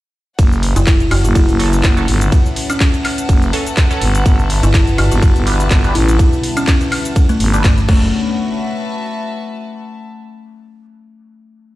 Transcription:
0.39 F#1 A3 C#4 F#4 C#5 F#5, kick, closed hi-hat, ride, cabasa
0.46 B4
0.52 cabasa
0.62 E5, open hi-hat
0.76 F#1 E4, closed hi-hat, cabasa
0.87 kick, clap, closed hi-hat, ride, cabasa
1.00 A5, closed hi-hat, cabasa
1.11 F#1 F#4, open hi-hat, high woodblock
1.24 F#1 F#4, closed hi-hat, cabasa
1.35 E4, kick, closed hi-hat, ride, cabasa
1.49 F#1, closed hi-hat, cabasa
1.60 F#3 C#4 A4, open hi-hat
1.73 closed hi-hat, cabasa
1.84 F#1, kick, clap, closed hi-hat, ride, cabasa
1.97 F#3 C#4 A4, closed hi-hat, cabasa
2.08 G1, open hi-hat
2.21 closed hi-hat, cabasa
2.32 kick, closed hi-hat, ride, cabasa
2.46 cabasa
2.56 open hi-hat
2.70 C#4, closed hi-hat, cabasa, high woodblock
2.80 C#4, kick, clap, closed hi-hat, ride, cabasa
2.94 closed hi-hat, cabasa
3.04 clap, open hi-hat, high woodblock
3.18 closed hi-hat, cabasa
3.29 F#1, kick, closed hi-hat, ride, cabasa
3.42 closed hi-hat, cabasa
3.53 F#3 C#4 A4, open hi-hat
3.66 closed hi-hat, cabasa
3.77 kick, clap, closed hi-hat, ride, cabasa
3.91 F#3 C#4 A4, closed hi-hat, cabasa
4.01 G1, open hi-hat
4.15 closed hi-hat, cabasa
4.26 G1 B3 D4 G4 D5, kick, closed hi-hat, ride, cabasa
4.39 cabasa
4.50 open hi-hat
4.63 G1 E4, closed hi-hat, cabasa
4.74 kick, clap, closed hi-hat, ride, cabasa
4.87 closed hi-hat, cabasa
4.98 G1 F#4, open hi-hat, high woodblock
5.12 G1 F#4, closed hi-hat, cabasa
5.22 kick, closed hi-hat, ride, cabasa
5.36 G1, closed hi-hat, cabasa
5.47 G3 D4 B4, open hi-hat
5.60 closed hi-hat, cabasa
5.71 G1, kick, clap, closed hi-hat, ride, cabasa
5.84 G3 D4 B4, closed hi-hat, cabasa
5.95 A1 E4, open hi-hat
6.08 closed hi-hat, cabasa
6.19 kick, closed hi-hat, ride, cabasa
6.33 cabasa
6.43 open hi-hat
6.57 C#4, closed hi-hat, cabasa, high woodblock
6.67 C#4, kick, clap, closed hi-hat, ride, cabasa
6.81 closed hi-hat, cabasa
6.92 clap, open hi-hat, high woodblock
7.05 closed hi-hat, cabasa
7.16 kick, closed hi-hat, ride, cabasa
7.29 A3, closed hi-hat, cabasa
7.40 G1, open hi-hat
7.53 G3 D4 B4, closed hi-hat, cabasa
7.64 G1, kick, clap, closed hi-hat, ride, cabasa
7.78 closed hi-hat, cabasa
7.89 F#1 F#3 A3 C#4 F#4 A4, kick, crash
7.97 B4
8.02 A3
8.28 E5
8.35 A5

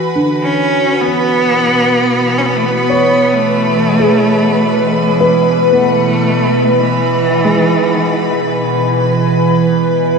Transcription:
Already playing: E3 F#4 B4 B5 D6
0.16 D3
0.43 C#4
1.01 B2 B3
1.70 E3
2.21 B4
2.38 C#4
2.46 B3
2.56 A3
2.66 B3
2.75 B3
2.90 C#5
3.34 A3
3.99 G#4
5.07 G#3
5.20 B4
5.64 A3
5.72 B3
6.80 E3
7.45 G#3

